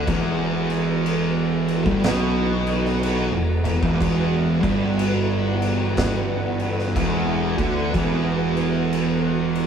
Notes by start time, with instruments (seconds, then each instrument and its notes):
Already playing: string machine E3 B3 F#4
0.07 fingered electric bass E1, distorted electric guitar E2, kick, crash
0.70 crash
1.06 crash
1.68 crash
1.86 fingered electric bass G1, distorted electric guitar G2, kick
2.03 fingered electric bass B1, distorted electric guitar B2, snare, crash
2.67 crash
2.86 snare
3.03 crash
3.32 fingered electric bass E1, distorted electric guitar E2
3.63 fingered electric bass E1, distorted electric guitar E2, crash
3.82 fingered electric bass E1, distorted electric guitar E2, kick
4.01 kick, crash
4.62 fingered electric bass G1, distorted electric guitar G2, kick, crash
4.99 crash
5.62 crash
5.97 kick, snare, crash
6.60 crash
6.79 snare
6.95 fingered electric bass E1, distorted electric guitar E2, kick, crash
7.58 fingered electric bass D2, distorted electric guitar D3, kick, crash
7.94 fingered electric bass E1, distorted electric guitar E2, kick, crash
8.57 crash
8.93 crash
9.55 crash